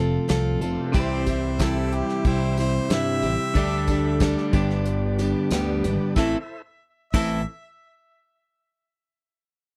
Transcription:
Already playing: F1 F2 C3 F3 A3 C4 F4 A4
0.00 C4
0.28 C2 F3 C4 F4 A4, snare, closed hi-hat
0.61 F1 A3 C4 F4 A4, closed hi-hat
0.67 B3 C4
0.73 D4 E4
0.78 F4 G4
0.84 A4 B4
0.90 C3 G3 C5 D5
0.94 C2 E3 C4 E4 G4 C5 E5, kick, closed hi-hat, tambourine
1.26 C4 E4 G4, kick, closed hi-hat, tambourine
1.59 C3 G3 C4 E4 G4 A4, kick, snare, closed hi-hat, tambourine
1.92 G4, closed hi-hat
2.09 snare
2.25 C2 G3 C4 E4 G4 C5, kick, closed hi-hat
2.57 C4 E4 G4 C5, closed hi-hat, tambourine
2.90 G2 C3 G3 C4 E4 G4 E5, snare, closed hi-hat, tambourine
3.22 A1 C4 E4 G4, closed hi-hat
3.55 D2 D3 G3 A3 D4 G4 A4 D5, kick, closed hi-hat, tambourine
3.88 G3 D4 A4, kick, closed hi-hat, tambourine
4.20 D3 G3 D4 A4, kick, snare, closed hi-hat, tambourine
4.38 snare
4.52 G1 G2 D3 G3 B3 D4 G4 B4 D5, kick, closed hi-hat, tambourine
4.70 snare
4.85 closed hi-hat, tambourine
5.18 G3 B3 D4 G4, snare, closed hi-hat, tambourine
5.51 D2 G2 D3 G3 B3 D4 G4, snare, closed hi-hat, tambourine
5.83 G#1 G3 B3 D4 G4, closed hi-hat
6.16 A1 A2 E3 C4 E4 A4 C5 E5, kick, snare, tambourine
7.13 A1 A2 E3 C4 E4 A4 E5, kick, crash, tambourine

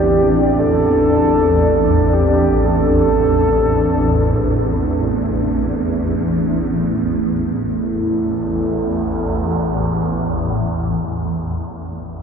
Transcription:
Already playing: A1 E2 C4 D4 G4 D5 A5
0.59 A4
2.14 G4
2.66 A4
6.77 A1 E2 A3
6.94 E4
7.06 A4

